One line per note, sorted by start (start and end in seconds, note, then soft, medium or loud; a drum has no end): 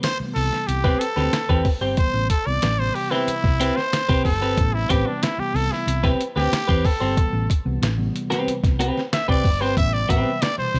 0.03 0.18 C5 loud
0.03 snare loud
0.03 closed hi-hat medium
0.20 0.96 C3 medium
0.20 0.96 E3 medium
0.20 0.96 G3 medium
0.20 0.26 A3 medium
0.20 muted fingered electric bass stroke soft
0.27 1.00 B3 medium
0.35 0.49 C2 medium
0.35 0.69 A4 loud
0.35 open hi-hat soft
0.53 snare soft
0.67 0.94 C2 medium
0.67 1.01 G4 medium
0.67 closed hi-hat medium
0.84 1.02 C4 medium
0.84 1.02 G4 medium
0.84 1.01 B4 medium
0.84 kick loud
0.84 snare soft
0.99 1.65 A4 loud
0.99 closed hi-hat medium
1.16 1.30 D2 medium
1.16 1.31 C4 medium
1.16 1.30 G4 medium
1.16 1.30 B4 medium
1.16 snare soft
1.33 snare loud
1.33 closed hi-hat medium
1.49 1.62 E2 loud
1.49 1.67 C4 medium
1.49 1.67 G4 medium
1.49 1.66 B4 medium
1.49 kick medium
1.65 kick medium
1.65 open hi-hat medium
1.81 1.94 G1 medium
1.81 1.96 C4 soft
1.81 1.95 G4 medium
1.81 1.95 C5 medium
1.97 2.27 C3 medium
1.97 2.27 E3 medium
1.97 2.27 G3 medium
1.97 2.27 B3 medium
1.97 2.29 C5 loud
1.97 kick loud
1.97 closed hi-hat medium
2.14 2.27 A1 medium
2.30 2.48 A4 loud
2.30 kick medium
2.30 closed hi-hat medium
2.46 2.60 C2 medium
2.46 2.66 C3 medium
2.46 2.66 E3 medium
2.46 2.66 G3 medium
2.46 2.66 B3 medium
2.46 2.81 D5 medium
2.62 2.89 A1 loud
2.62 snare loud
2.62 closed hi-hat medium
2.79 3.56 C3 medium
2.79 3.56 E3 medium
2.79 3.56 G3 medium
2.79 3.56 B3 medium
2.79 2.96 C5 medium
2.95 3.13 G4 medium
2.95 open hi-hat soft
3.11 3.29 C4 medium
3.11 3.78 E4 loud
3.11 3.29 G4 medium
3.11 3.29 B4 medium
3.11 snare soft
3.27 muted fingered electric bass stroke soft
3.27 closed hi-hat medium
3.44 3.70 C2 medium
3.44 kick medium
3.44 snare soft
3.60 3.77 C4 medium
3.60 3.78 G4 medium
3.60 3.78 B4 loud
3.60 closed hi-hat medium
3.76 4.24 C5 loud
3.76 snare soft
3.93 snare loud
3.93 closed hi-hat medium
4.09 4.22 C2 medium
4.09 4.26 C4 medium
4.09 4.26 G4 medium
4.09 4.26 B4 medium
4.09 kick medium
4.24 4.41 F#1 medium
4.24 4.75 A4 loud
4.24 kick medium
4.24 open hi-hat medium
4.41 4.54 G1 medium
4.41 4.55 C4 medium
4.41 4.55 G4 medium
4.41 4.55 B4 medium
4.57 4.84 A1 loud
4.57 4.86 C3 medium
4.57 4.86 E3 medium
4.57 4.86 G3 medium
4.57 4.87 B3 medium
4.57 kick loud
4.57 closed hi-hat medium
4.74 4.92 E4 medium
4.89 5.03 A1 loud
4.89 5.07 C4 medium
4.89 5.08 G4 medium
4.89 5.07 G4 medium
4.89 5.08 B4 medium
4.89 kick medium
4.89 closed hi-hat medium
5.06 5.25 C3 medium
5.06 5.25 E3 medium
5.06 5.26 G3 medium
5.06 5.26 B3 medium
5.06 5.24 D4 medium
5.23 5.41 E4 medium
5.23 snare loud
5.23 closed hi-hat medium
5.38 6.15 C3 medium
5.38 6.16 E3 medium
5.38 6.15 G3 medium
5.38 6.16 B3 medium
5.38 5.57 G4 medium
5.38 muted fingered electric bass stroke soft
5.54 5.68 C2 loud
5.54 5.74 A4 loud
5.54 open hi-hat soft
5.72 6.10 E4 medium
5.72 snare soft
5.87 6.14 C2 loud
5.87 closed hi-hat medium
6.04 6.21 C4 medium
6.04 6.21 G4 medium
6.04 6.21 B4 medium
6.04 kick medium
6.04 snare soft
6.21 closed hi-hat medium
6.36 6.49 D2 medium
6.36 6.50 C4 soft
6.36 6.50 G4 medium
6.36 6.87 G4 loud
6.36 6.49 B4 medium
6.36 snare soft
6.53 snare loud
6.53 closed hi-hat medium
6.68 6.82 E2 loud
6.68 6.86 C4 medium
6.68 6.86 G4 medium
6.68 6.85 B4 medium
6.68 kick medium
6.85 7.50 A4 medium
6.85 kick medium
6.85 open hi-hat medium
7.00 7.14 G1 medium
7.00 7.15 C4 soft
7.00 7.15 G4 medium
7.00 7.14 C5 medium
7.17 7.46 C3 medium
7.17 7.46 E3 medium
7.17 7.46 G3 medium
7.17 7.46 B3 medium
7.17 kick loud
7.17 closed hi-hat medium
7.33 7.46 A1 medium
7.50 kick medium
7.50 closed hi-hat medium
7.65 7.79 C2 medium
7.65 7.85 C3 medium
7.65 7.85 E3 medium
7.65 7.85 G3 medium
7.65 7.85 B3 medium
7.82 8.08 A1 medium
7.82 snare loud
7.82 closed hi-hat medium
7.98 8.75 C3 medium
7.98 8.75 E3 medium
7.98 8.75 G3 medium
7.98 8.75 B3 medium
8.16 closed hi-hat medium
8.30 8.51 C4 medium
8.30 8.51 G4 medium
8.30 8.51 B4 medium
8.30 snare soft
8.30 closed hi-hat medium
8.47 muted fingered electric bass stroke soft
8.47 closed hi-hat medium
8.63 8.90 C2 medium
8.63 kick loud
8.63 snare soft
8.63 closed hi-hat medium
8.79 9.00 C4 medium
8.79 9.00 G4 medium
8.79 9.00 B4 medium
8.79 closed hi-hat medium
8.97 snare soft
9.13 9.28 E5 medium
9.13 snare loud
9.13 closed hi-hat medium
9.28 9.42 C2 medium
9.28 9.46 C4 medium
9.28 9.46 G4 medium
9.28 9.45 B4 medium
9.28 9.63 D5 loud
9.28 kick medium
9.44 9.60 F#1 medium
9.44 kick medium
9.44 open hi-hat medium
9.60 9.74 G1 medium
9.60 9.75 C4 medium
9.60 9.75 G4 medium
9.60 9.74 B4 medium
9.60 9.77 C5 medium
9.77 10.03 A1 loud
9.77 10.06 C3 medium
9.77 10.06 E3 medium
9.77 10.06 G3 medium
9.77 10.06 B3 medium
9.77 9.95 E5 loud
9.77 kick loud
9.77 closed hi-hat medium
9.94 10.12 D5 loud
10.09 10.23 A1 medium
10.09 10.29 C4 medium
10.09 10.30 G4 medium
10.09 10.30 B4 medium
10.09 10.44 E5 medium
10.09 kick medium
10.09 closed hi-hat medium
10.25 10.45 C3 medium
10.25 10.45 E3 medium
10.25 10.45 G3 medium
10.25 10.45 B3 medium
10.42 10.58 D5 loud
10.42 snare loud
10.42 closed hi-hat medium
10.57 10.79 B2 medium
10.57 10.79 C3 medium
10.57 10.79 E3 medium
10.57 10.79 G3 medium
10.57 10.79 C5 medium
10.57 muted fingered electric bass stroke soft
10.74 10.79 C2 medium
10.74 open hi-hat medium